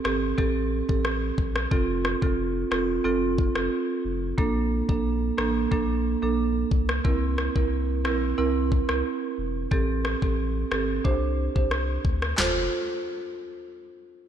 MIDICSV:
0, 0, Header, 1, 4, 480
1, 0, Start_track
1, 0, Key_signature, -1, "major"
1, 0, Tempo, 666667
1, 1234, Time_signature, 4, 2, 24, 8
1, 10284, End_track
2, 0, Start_track
2, 0, Title_t, "Marimba"
2, 0, Program_c, 0, 12
2, 32, Note_on_c, 0, 60, 77
2, 34, Note_on_c, 0, 67, 71
2, 36, Note_on_c, 0, 69, 84
2, 177, Note_off_c, 0, 60, 0
2, 178, Note_off_c, 0, 67, 0
2, 179, Note_off_c, 0, 69, 0
2, 271, Note_on_c, 0, 60, 91
2, 274, Note_on_c, 0, 67, 85
2, 276, Note_on_c, 0, 69, 100
2, 609, Note_off_c, 0, 60, 0
2, 611, Note_off_c, 0, 67, 0
2, 612, Note_off_c, 0, 69, 0
2, 639, Note_on_c, 0, 60, 72
2, 641, Note_on_c, 0, 67, 69
2, 643, Note_on_c, 0, 69, 84
2, 771, Note_off_c, 0, 60, 0
2, 772, Note_off_c, 0, 67, 0
2, 773, Note_off_c, 0, 69, 0
2, 1232, Note_on_c, 0, 60, 90
2, 1234, Note_on_c, 0, 65, 80
2, 1236, Note_on_c, 0, 69, 98
2, 1377, Note_off_c, 0, 60, 0
2, 1378, Note_off_c, 0, 65, 0
2, 1379, Note_off_c, 0, 69, 0
2, 1599, Note_on_c, 0, 60, 70
2, 1601, Note_on_c, 0, 65, 68
2, 1603, Note_on_c, 0, 69, 75
2, 1731, Note_off_c, 0, 60, 0
2, 1732, Note_off_c, 0, 65, 0
2, 1733, Note_off_c, 0, 69, 0
2, 1952, Note_on_c, 0, 60, 75
2, 1954, Note_on_c, 0, 65, 69
2, 1956, Note_on_c, 0, 69, 85
2, 2096, Note_off_c, 0, 60, 0
2, 2097, Note_off_c, 0, 65, 0
2, 2099, Note_off_c, 0, 69, 0
2, 2191, Note_on_c, 0, 60, 91
2, 2194, Note_on_c, 0, 65, 81
2, 2196, Note_on_c, 0, 69, 101
2, 2529, Note_off_c, 0, 60, 0
2, 2531, Note_off_c, 0, 65, 0
2, 2532, Note_off_c, 0, 69, 0
2, 2558, Note_on_c, 0, 60, 70
2, 2561, Note_on_c, 0, 65, 64
2, 2563, Note_on_c, 0, 69, 81
2, 2691, Note_off_c, 0, 60, 0
2, 2692, Note_off_c, 0, 65, 0
2, 2693, Note_off_c, 0, 69, 0
2, 3152, Note_on_c, 0, 58, 92
2, 3154, Note_on_c, 0, 62, 84
2, 3156, Note_on_c, 0, 69, 102
2, 3296, Note_off_c, 0, 58, 0
2, 3297, Note_off_c, 0, 62, 0
2, 3298, Note_off_c, 0, 69, 0
2, 3520, Note_on_c, 0, 58, 72
2, 3522, Note_on_c, 0, 62, 64
2, 3524, Note_on_c, 0, 69, 77
2, 3652, Note_off_c, 0, 58, 0
2, 3653, Note_off_c, 0, 62, 0
2, 3654, Note_off_c, 0, 69, 0
2, 3872, Note_on_c, 0, 58, 77
2, 3874, Note_on_c, 0, 62, 69
2, 3876, Note_on_c, 0, 69, 84
2, 4017, Note_off_c, 0, 58, 0
2, 4018, Note_off_c, 0, 62, 0
2, 4019, Note_off_c, 0, 69, 0
2, 4113, Note_on_c, 0, 58, 89
2, 4115, Note_on_c, 0, 62, 87
2, 4117, Note_on_c, 0, 69, 102
2, 4450, Note_off_c, 0, 58, 0
2, 4451, Note_off_c, 0, 62, 0
2, 4452, Note_off_c, 0, 69, 0
2, 4479, Note_on_c, 0, 58, 74
2, 4481, Note_on_c, 0, 62, 70
2, 4483, Note_on_c, 0, 69, 83
2, 4611, Note_off_c, 0, 58, 0
2, 4613, Note_off_c, 0, 62, 0
2, 4613, Note_off_c, 0, 69, 0
2, 5072, Note_on_c, 0, 60, 91
2, 5074, Note_on_c, 0, 64, 85
2, 5076, Note_on_c, 0, 70, 98
2, 5216, Note_off_c, 0, 60, 0
2, 5218, Note_off_c, 0, 64, 0
2, 5219, Note_off_c, 0, 70, 0
2, 5439, Note_on_c, 0, 60, 69
2, 5442, Note_on_c, 0, 64, 68
2, 5443, Note_on_c, 0, 70, 78
2, 5571, Note_off_c, 0, 60, 0
2, 5573, Note_off_c, 0, 64, 0
2, 5574, Note_off_c, 0, 70, 0
2, 5792, Note_on_c, 0, 60, 76
2, 5795, Note_on_c, 0, 64, 72
2, 5797, Note_on_c, 0, 70, 84
2, 5937, Note_off_c, 0, 60, 0
2, 5938, Note_off_c, 0, 64, 0
2, 5939, Note_off_c, 0, 70, 0
2, 6032, Note_on_c, 0, 60, 93
2, 6034, Note_on_c, 0, 64, 82
2, 6036, Note_on_c, 0, 70, 98
2, 6370, Note_off_c, 0, 60, 0
2, 6371, Note_off_c, 0, 64, 0
2, 6372, Note_off_c, 0, 70, 0
2, 6399, Note_on_c, 0, 60, 75
2, 6401, Note_on_c, 0, 64, 68
2, 6403, Note_on_c, 0, 70, 82
2, 6531, Note_off_c, 0, 60, 0
2, 6532, Note_off_c, 0, 64, 0
2, 6533, Note_off_c, 0, 70, 0
2, 6992, Note_on_c, 0, 60, 90
2, 6994, Note_on_c, 0, 67, 85
2, 6996, Note_on_c, 0, 69, 102
2, 7136, Note_off_c, 0, 60, 0
2, 7138, Note_off_c, 0, 67, 0
2, 7139, Note_off_c, 0, 69, 0
2, 7359, Note_on_c, 0, 60, 70
2, 7361, Note_on_c, 0, 67, 67
2, 7363, Note_on_c, 0, 69, 75
2, 7491, Note_off_c, 0, 60, 0
2, 7492, Note_off_c, 0, 67, 0
2, 7493, Note_off_c, 0, 69, 0
2, 7712, Note_on_c, 0, 60, 76
2, 7715, Note_on_c, 0, 67, 68
2, 7717, Note_on_c, 0, 69, 86
2, 7857, Note_off_c, 0, 60, 0
2, 7858, Note_off_c, 0, 67, 0
2, 7859, Note_off_c, 0, 69, 0
2, 7952, Note_on_c, 0, 62, 89
2, 7954, Note_on_c, 0, 67, 83
2, 7957, Note_on_c, 0, 72, 102
2, 8290, Note_off_c, 0, 62, 0
2, 8291, Note_off_c, 0, 67, 0
2, 8292, Note_off_c, 0, 72, 0
2, 8319, Note_on_c, 0, 62, 72
2, 8321, Note_on_c, 0, 67, 66
2, 8323, Note_on_c, 0, 72, 80
2, 8451, Note_off_c, 0, 62, 0
2, 8452, Note_off_c, 0, 67, 0
2, 8453, Note_off_c, 0, 72, 0
2, 8910, Note_on_c, 0, 65, 85
2, 8913, Note_on_c, 0, 69, 75
2, 8917, Note_on_c, 0, 72, 91
2, 9093, Note_off_c, 0, 65, 0
2, 9095, Note_off_c, 0, 69, 0
2, 9097, Note_off_c, 0, 72, 0
2, 10284, End_track
3, 0, Start_track
3, 0, Title_t, "Sub bass"
3, 0, Program_c, 1, 38
3, 34, Note_on_c, 1, 31, 94
3, 242, Note_off_c, 1, 31, 0
3, 276, Note_on_c, 1, 33, 100
3, 593, Note_off_c, 1, 33, 0
3, 643, Note_on_c, 1, 33, 86
3, 947, Note_off_c, 1, 33, 0
3, 994, Note_on_c, 1, 34, 92
3, 1202, Note_off_c, 1, 34, 0
3, 1235, Note_on_c, 1, 29, 116
3, 1552, Note_off_c, 1, 29, 0
3, 1600, Note_on_c, 1, 29, 97
3, 1906, Note_off_c, 1, 29, 0
3, 1953, Note_on_c, 1, 28, 81
3, 2161, Note_off_c, 1, 28, 0
3, 2194, Note_on_c, 1, 29, 97
3, 2512, Note_off_c, 1, 29, 0
3, 2561, Note_on_c, 1, 29, 100
3, 2659, Note_off_c, 1, 29, 0
3, 2914, Note_on_c, 1, 29, 94
3, 3122, Note_off_c, 1, 29, 0
3, 3154, Note_on_c, 1, 34, 104
3, 3472, Note_off_c, 1, 34, 0
3, 3521, Note_on_c, 1, 34, 94
3, 3826, Note_off_c, 1, 34, 0
3, 3874, Note_on_c, 1, 33, 92
3, 4082, Note_off_c, 1, 33, 0
3, 4116, Note_on_c, 1, 34, 101
3, 4433, Note_off_c, 1, 34, 0
3, 4482, Note_on_c, 1, 34, 93
3, 4787, Note_off_c, 1, 34, 0
3, 4834, Note_on_c, 1, 36, 99
3, 5042, Note_off_c, 1, 36, 0
3, 5075, Note_on_c, 1, 36, 107
3, 5392, Note_off_c, 1, 36, 0
3, 5441, Note_on_c, 1, 36, 95
3, 5795, Note_on_c, 1, 34, 93
3, 5806, Note_off_c, 1, 36, 0
3, 6002, Note_off_c, 1, 34, 0
3, 6035, Note_on_c, 1, 36, 106
3, 6352, Note_off_c, 1, 36, 0
3, 6401, Note_on_c, 1, 36, 85
3, 6499, Note_off_c, 1, 36, 0
3, 6755, Note_on_c, 1, 28, 94
3, 6962, Note_off_c, 1, 28, 0
3, 6995, Note_on_c, 1, 33, 105
3, 7312, Note_off_c, 1, 33, 0
3, 7361, Note_on_c, 1, 33, 106
3, 7666, Note_off_c, 1, 33, 0
3, 7714, Note_on_c, 1, 31, 92
3, 7922, Note_off_c, 1, 31, 0
3, 7956, Note_on_c, 1, 36, 104
3, 8273, Note_off_c, 1, 36, 0
3, 8322, Note_on_c, 1, 36, 88
3, 8627, Note_off_c, 1, 36, 0
3, 8674, Note_on_c, 1, 38, 94
3, 8881, Note_off_c, 1, 38, 0
3, 8914, Note_on_c, 1, 29, 101
3, 9137, Note_off_c, 1, 29, 0
3, 10284, End_track
4, 0, Start_track
4, 0, Title_t, "Drums"
4, 36, Note_on_c, 9, 37, 93
4, 108, Note_off_c, 9, 37, 0
4, 276, Note_on_c, 9, 36, 92
4, 348, Note_off_c, 9, 36, 0
4, 642, Note_on_c, 9, 36, 87
4, 714, Note_off_c, 9, 36, 0
4, 754, Note_on_c, 9, 37, 84
4, 826, Note_off_c, 9, 37, 0
4, 994, Note_on_c, 9, 36, 89
4, 1066, Note_off_c, 9, 36, 0
4, 1120, Note_on_c, 9, 37, 83
4, 1192, Note_off_c, 9, 37, 0
4, 1234, Note_on_c, 9, 36, 114
4, 1306, Note_off_c, 9, 36, 0
4, 1474, Note_on_c, 9, 37, 83
4, 1546, Note_off_c, 9, 37, 0
4, 1600, Note_on_c, 9, 36, 91
4, 1672, Note_off_c, 9, 36, 0
4, 1956, Note_on_c, 9, 37, 90
4, 2028, Note_off_c, 9, 37, 0
4, 2436, Note_on_c, 9, 36, 96
4, 2508, Note_off_c, 9, 36, 0
4, 2560, Note_on_c, 9, 37, 90
4, 2632, Note_off_c, 9, 37, 0
4, 3154, Note_on_c, 9, 36, 113
4, 3226, Note_off_c, 9, 36, 0
4, 3521, Note_on_c, 9, 36, 91
4, 3593, Note_off_c, 9, 36, 0
4, 3875, Note_on_c, 9, 37, 90
4, 3947, Note_off_c, 9, 37, 0
4, 4116, Note_on_c, 9, 36, 95
4, 4188, Note_off_c, 9, 36, 0
4, 4834, Note_on_c, 9, 36, 85
4, 4906, Note_off_c, 9, 36, 0
4, 4961, Note_on_c, 9, 37, 86
4, 5033, Note_off_c, 9, 37, 0
4, 5075, Note_on_c, 9, 36, 113
4, 5147, Note_off_c, 9, 36, 0
4, 5314, Note_on_c, 9, 37, 83
4, 5386, Note_off_c, 9, 37, 0
4, 5441, Note_on_c, 9, 36, 90
4, 5513, Note_off_c, 9, 36, 0
4, 5795, Note_on_c, 9, 37, 91
4, 5867, Note_off_c, 9, 37, 0
4, 6277, Note_on_c, 9, 36, 92
4, 6349, Note_off_c, 9, 36, 0
4, 6400, Note_on_c, 9, 37, 90
4, 6472, Note_off_c, 9, 37, 0
4, 6995, Note_on_c, 9, 36, 112
4, 7067, Note_off_c, 9, 36, 0
4, 7234, Note_on_c, 9, 37, 82
4, 7306, Note_off_c, 9, 37, 0
4, 7360, Note_on_c, 9, 36, 89
4, 7432, Note_off_c, 9, 36, 0
4, 7715, Note_on_c, 9, 37, 89
4, 7787, Note_off_c, 9, 37, 0
4, 7955, Note_on_c, 9, 36, 93
4, 8027, Note_off_c, 9, 36, 0
4, 8322, Note_on_c, 9, 36, 84
4, 8394, Note_off_c, 9, 36, 0
4, 8433, Note_on_c, 9, 37, 88
4, 8505, Note_off_c, 9, 37, 0
4, 8674, Note_on_c, 9, 36, 90
4, 8746, Note_off_c, 9, 36, 0
4, 8800, Note_on_c, 9, 37, 83
4, 8872, Note_off_c, 9, 37, 0
4, 8914, Note_on_c, 9, 38, 99
4, 8914, Note_on_c, 9, 39, 83
4, 8914, Note_on_c, 9, 43, 94
4, 8986, Note_off_c, 9, 38, 0
4, 8986, Note_off_c, 9, 39, 0
4, 8986, Note_off_c, 9, 43, 0
4, 10284, End_track
0, 0, End_of_file